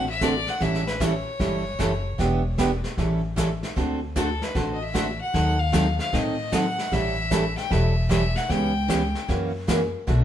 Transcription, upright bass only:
0, 0, Header, 1, 2, 480
1, 0, Start_track
1, 0, Tempo, 394477
1, 740, Time_signature, 4, 2, 24, 8
1, 12462, End_track
2, 0, Start_track
2, 0, Title_t, "Upright bass"
2, 0, Program_c, 0, 32
2, 0, Note_on_c, 0, 33, 83
2, 548, Note_off_c, 0, 33, 0
2, 738, Note_on_c, 0, 33, 85
2, 1506, Note_off_c, 0, 33, 0
2, 1700, Note_on_c, 0, 31, 82
2, 2107, Note_off_c, 0, 31, 0
2, 2179, Note_on_c, 0, 30, 78
2, 2587, Note_off_c, 0, 30, 0
2, 2663, Note_on_c, 0, 28, 84
2, 3429, Note_off_c, 0, 28, 0
2, 3622, Note_on_c, 0, 33, 86
2, 4388, Note_off_c, 0, 33, 0
2, 4583, Note_on_c, 0, 38, 91
2, 5348, Note_off_c, 0, 38, 0
2, 5538, Note_on_c, 0, 33, 79
2, 6305, Note_off_c, 0, 33, 0
2, 6499, Note_on_c, 0, 39, 87
2, 7266, Note_off_c, 0, 39, 0
2, 7460, Note_on_c, 0, 45, 85
2, 8227, Note_off_c, 0, 45, 0
2, 8417, Note_on_c, 0, 33, 91
2, 9186, Note_off_c, 0, 33, 0
2, 9379, Note_on_c, 0, 28, 87
2, 10148, Note_off_c, 0, 28, 0
2, 10340, Note_on_c, 0, 37, 90
2, 11109, Note_off_c, 0, 37, 0
2, 11302, Note_on_c, 0, 42, 81
2, 12071, Note_off_c, 0, 42, 0
2, 12263, Note_on_c, 0, 35, 87
2, 12462, Note_off_c, 0, 35, 0
2, 12462, End_track
0, 0, End_of_file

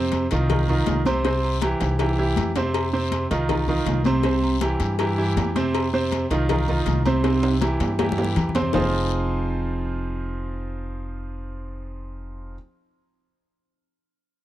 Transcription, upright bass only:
0, 0, Header, 1, 2, 480
1, 0, Start_track
1, 0, Key_signature, -4, "minor"
1, 0, Tempo, 374532
1, 1603, Time_signature, 4, 2, 24, 8
1, 18506, End_track
2, 0, Start_track
2, 0, Title_t, "Upright bass"
2, 0, Program_c, 0, 32
2, 0, Note_on_c, 0, 41, 93
2, 331, Note_off_c, 0, 41, 0
2, 410, Note_on_c, 0, 36, 103
2, 1076, Note_off_c, 0, 36, 0
2, 1122, Note_on_c, 0, 36, 87
2, 2246, Note_off_c, 0, 36, 0
2, 2323, Note_on_c, 0, 36, 91
2, 2992, Note_off_c, 0, 36, 0
2, 3040, Note_on_c, 0, 41, 90
2, 4165, Note_off_c, 0, 41, 0
2, 4241, Note_on_c, 0, 36, 93
2, 4911, Note_off_c, 0, 36, 0
2, 4955, Note_on_c, 0, 36, 90
2, 6083, Note_off_c, 0, 36, 0
2, 6152, Note_on_c, 0, 43, 92
2, 6826, Note_off_c, 0, 43, 0
2, 6876, Note_on_c, 0, 41, 89
2, 8004, Note_off_c, 0, 41, 0
2, 8082, Note_on_c, 0, 36, 100
2, 8753, Note_off_c, 0, 36, 0
2, 8798, Note_on_c, 0, 36, 91
2, 9926, Note_off_c, 0, 36, 0
2, 10000, Note_on_c, 0, 43, 100
2, 10671, Note_off_c, 0, 43, 0
2, 10718, Note_on_c, 0, 41, 92
2, 11145, Note_off_c, 0, 41, 0
2, 11206, Note_on_c, 0, 29, 92
2, 16075, Note_off_c, 0, 29, 0
2, 18506, End_track
0, 0, End_of_file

